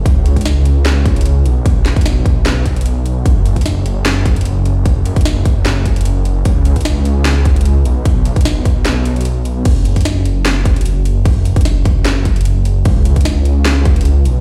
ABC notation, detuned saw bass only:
X:1
M:4/4
L:1/8
Q:"Swing 16ths" 1/4=150
K:Blyd
V:1 name="Detuned saw bass" clef=bass
C,,6- C,, B,,,- | B,,,8 | F,,,8- | F,,,8 |
C,,6- C,, B,,,- | B,,,8 | F,,,8- | F,,,8 |
C,,6- C,, B,,, |]